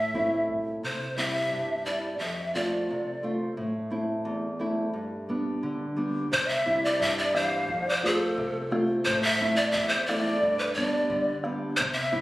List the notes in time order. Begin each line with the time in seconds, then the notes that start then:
Already playing: A2 E5
0.14 A3 C4 E4, bombo low
0.50 bombo low
0.83 C3 C5
1.17 G3 C4 E4 E5
1.51 G2
1.85 G3 C4 E4 D5
2.19 F2 E5
2.55 A3 C4 F4 D5
2.90 C3
3.23 A3 C4 F4
3.57 A2
3.90 A3 C4 E4
4.25 E2
4.59 A3 C4 E4
4.94 G2
5.29 G3 B3 D4
5.63 D3
5.96 G3 B3 D4
6.32 C3 C5, bombo low
6.48 E5
6.66 G3 C4 E4, bombo low
6.83 D5
7.00 G2 E5, bombo low
7.17 D5
7.33 E3 G3 C4 C5 F5, bombo rim
7.68 F2, bombo low
7.87 C5 D5
8.03 A3 C4 F4 A4 C5, bombo low
8.37 C3, bombo low
8.71 A3 C4 F4, bombo rim
9.05 A2 C5, bombo low
9.22 E5
9.41 A3 C4 E4, bombo low
9.56 D5
9.72 E2 E5, bombo low
9.89 C5
10.06 A3 C4 E4 D5, bombo rim
10.42 G2, bombo low
10.59 B4
10.74 G3 B3 D4 D5, bombo low
10.79 D5
11.10 D3, bombo low
11.44 G3 B3 D4, bombo rim
11.76 C3 C5, bombo low
11.94 E5
12.12 G3 C4 E4, bombo low